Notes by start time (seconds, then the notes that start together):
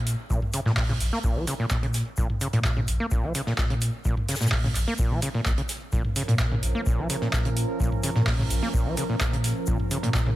Already playing: A#2
0.07 open hi-hat, shaker
0.30 A#1 A#2, kick, shaker
0.42 mid tom
0.53 C#3, open hi-hat, shaker
0.66 A#2, snare, mid tom
0.77 A#2, kick, snare, clap, open hi-hat
0.88 C#3, snare, mid tom
1.00 A#1, open hi-hat, shaker
1.13 A#3, snare
1.24 A#2, kick, shaker
1.36 A#1 F3
1.47 C#3, open hi-hat, shaker
1.60 A#2
1.70 A#2, kick, snare, clap, shaker
1.83 C#3, closed hi-hat
1.94 snare, open hi-hat, shaker
2.17 A#1 A#2, kick, shaker
2.30 mid tom
2.41 C#3, open hi-hat, shaker
2.53 A#2, closed hi-hat, mid tom
2.64 A#2, kick, snare, clap, shaker
2.77 C#3, mid tom
2.87 A#1, open hi-hat, shaker
3.00 A#3
3.11 A#2, kick, shaker
3.23 A#1 F3
3.35 C#3, open hi-hat, shaker
3.47 A#2, snare
3.58 A#2, kick, snare, clap, shaker
3.70 C#3, closed hi-hat
3.82 open hi-hat, shaker
4.05 A#1 A#2, kick, shaker
4.17 mid tom
4.29 C#3, snare, open hi-hat, shaker
4.35 snare, shaker
4.41 A#2, snare, mid tom, shaker
4.46 snare, shaker
4.52 A#2, kick, snare, clap, open hi-hat
4.64 C#3, snare, mid tom
4.75 A#1, clap, open hi-hat, shaker
4.87 A#3, snare
4.98 A#2, kick, shaker
5.11 A#2 F3
5.22 C#3, open hi-hat, shaker
5.35 A#2
5.46 G#1 A#2, kick, snare, clap, shaker
5.58 C#3, closed hi-hat
5.69 snare, open hi-hat, shaker
5.93 A#1 A#2 F3 C#4 A#4, kick, shaker
6.05 mid tom
6.16 C#3, open hi-hat, shaker
6.28 A#2, closed hi-hat, mid tom
6.39 A#2, kick, snare, clap, shaker
6.51 C#3, mid tom
6.63 A#1, open hi-hat, shaker
6.75 A#3
6.86 A#2, kick, shaker
6.98 A#1 F3
7.10 C#3, open hi-hat, shaker
7.21 A#2, snare
7.33 A#2, kick, snare, clap, shaker
7.45 C#3, closed hi-hat
7.57 open hi-hat, shaker
7.80 A#1 A#2, kick, shaker
7.92 mid tom
8.03 C#3, open hi-hat, shaker
8.15 A#2, snare, mid tom
8.27 A#2, kick, snare, clap, open hi-hat
8.39 C#3, snare, mid tom
8.50 A#1, open hi-hat, shaker
8.63 A#3, snare
8.74 A#2, kick, shaker
8.86 A#1 F3
8.97 C#3, open hi-hat, shaker
9.09 A#2
9.20 A#2, kick, snare, clap, shaker
9.33 C#3, closed hi-hat
9.44 snare, open hi-hat, shaker
9.67 A#1 A#2, kick, shaker
9.80 mid tom
9.91 C#3, open hi-hat, shaker
10.03 A#2, closed hi-hat, mid tom
10.14 A#2, kick, snare, clap, shaker
10.27 C#3, mid tom